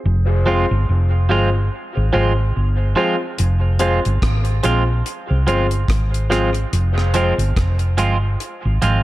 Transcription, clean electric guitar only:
0.46 0.65 F3 medium
0.46 0.65 G#3 medium
0.46 0.65 C4 medium
0.46 0.66 F4 medium
1.29 1.48 F3 medium
1.29 1.49 G#3 medium
1.29 1.49 C4 medium
1.29 1.49 F4 medium
2.13 2.31 F3 medium
2.13 2.32 G#3 medium
2.13 2.32 C4 medium
2.13 2.32 F4 medium
2.96 3.15 F3 medium
2.96 3.15 G#3 medium
2.96 3.15 C4 medium
2.96 3.16 F4 medium
3.80 3.98 F3 medium
3.80 3.99 G#3 medium
3.80 3.99 C4 medium
3.80 3.99 F4 loud
4.63 4.82 F3 medium
4.63 4.82 G#3 medium
4.63 4.83 C4 medium
4.63 4.83 F4 loud
5.47 5.65 F3 medium
5.47 5.66 G#3 medium
5.47 5.66 C4 medium
5.47 5.66 F4 medium
6.30 6.49 F3 medium
6.30 6.49 G#3 medium
6.30 6.49 C4 medium
6.30 6.50 F4 medium
7.14 7.33 F3 medium
7.14 7.33 G#3 medium
7.14 7.33 C4 medium
7.14 7.34 F4 medium
7.98 8.16 F3 medium
7.98 8.16 G#3 medium
7.98 8.17 C4 medium
7.98 8.17 F4 medium
8.82 9.00 F3 medium
8.82 9.00 G#3 medium
8.82 9.01 C4 medium
8.82 9.01 F4 medium

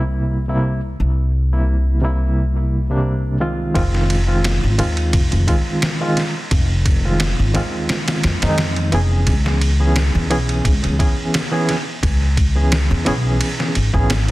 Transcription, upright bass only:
0.00 0.97 C2 medium
1.00 3.72 C2 medium
3.76 4.59 F1 medium
4.64 4.81 G#1 medium
4.79 5.10 D#2 medium
5.14 5.30 F1 medium
5.33 5.46 F1 medium
6.51 7.35 F1 loud
7.39 7.57 G#1 medium
7.55 7.85 D#2 medium
8.24 8.40 F2 medium
8.42 8.90 F2 medium
8.93 9.23 F1 loud
9.27 10.11 C#2 loud
10.15 10.31 E2 loud
10.31 10.61 B1 medium
10.65 10.81 C#2 medium
10.85 10.98 C#2 medium
12.03 12.87 C#2 loud
12.91 13.08 E2 loud
13.07 13.37 B1 medium
13.76 13.92 G#1 medium
13.94 14.31 G#1 medium

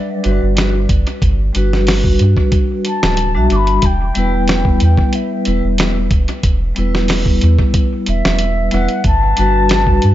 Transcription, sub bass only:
0.25 0.40 G1 medium
0.42 0.87 G1 medium
0.90 1.05 G1 loud
1.22 1.51 G1 loud
1.55 2.17 G1 medium
2.20 2.35 G2 medium
3.03 3.37 D1 medium
3.35 3.49 B1 medium
3.51 3.80 G1 medium
3.83 4.12 E1 medium
4.16 4.78 E1 medium
4.81 4.96 E2 medium
5.47 5.62 E1 medium
5.64 6.09 E1 medium
6.11 6.26 E1 loud
6.44 6.73 E1 medium
6.77 7.39 E1 medium
7.42 7.57 E2 medium
8.08 8.22 E1 medium
8.25 8.70 E1 medium
8.73 8.88 E1 medium
9.05 9.34 G1 medium
9.38 10.00 G1 medium
10.04 10.15 G2 medium

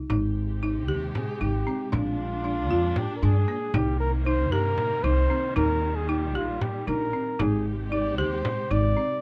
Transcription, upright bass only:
0.10 0.88 G#1 medium
0.88 1.10 D#2 loud
1.41 1.63 G#1 medium
1.93 2.70 A#1 loud
2.70 2.92 F2 loud
3.23 3.44 G2 loud
3.74 4.52 C2 loud
4.52 4.74 G2 loud
5.04 5.26 C2 loud
5.56 6.35 D#2 medium
6.35 6.57 A#1 loud
6.88 7.09 A#1 loud
7.40 8.19 G#1 medium
8.19 8.41 D#2 loud
8.71 8.93 G#1 loud

